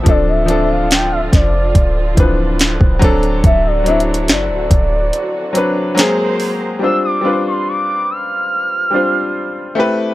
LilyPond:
<<
  \new Staff \with { instrumentName = "Soft synth lead" } { \time 4/4 \key g \mixolydian \tempo 4 = 71 d''16 e''8 f''16 g''16 e''16 d''4 r4. | e''16 d''16 e''8 d''2 r4 | e'''16 d'''8 c'''16 d'''8 f'''2 r8 | }
  \new Staff \with { instrumentName = "String section" } { \time 4/4 \key g \mixolydian << { f'2.~ f'8 fis'8~ | fis'2. <gis bis'>4 | r1 | } \\ { <d c'>1~ | <d c'>2. ais'4 | r1 | } >> }
  \new Staff \with { instrumentName = "Grand piano" } { \time 4/4 \key g \mixolydian <f c' d' a'>8 <f c' d' a'>4. r8 <e f c' d' b'>4 <fis c' d' a'>8~ | <fis c' d' a'>8 <fis c' d' e'>4. r8 <fis c' d' b'>8 <fis ais bis gis'>4 | <g c' d' f' c''>8 <g c' d' f' b' c''>4. r8 <g c' d' f' c''>4 <a c' e' g' b'>8 | }
  \new Staff \with { instrumentName = "808-style bass" } { \clef bass \time 4/4 \key g \mixolydian d,,4. f,,8 d,,8 d,,8. d,,16 d,,8 | d,,4 fis,,16 d,,16 d,,8 r2 | r1 | }
  \new DrumStaff \with { instrumentName = "Drums" } \drummode { \time 4/4 <hh bd>8 hh8 <hh sn>8 <hh bd sn>8 <hh bd>8 <hh bd>8 <hh sn>16 bd16 <hh bd>16 hh16 | \tuplet 3/2 { <hh bd>16 r16 r16 hh16 hh16 hh16 } <hh sn>8 <hh bd>8 hh8 hh8 <hh sn>8 hho8 | r4 r4 r4 r4 | }
>>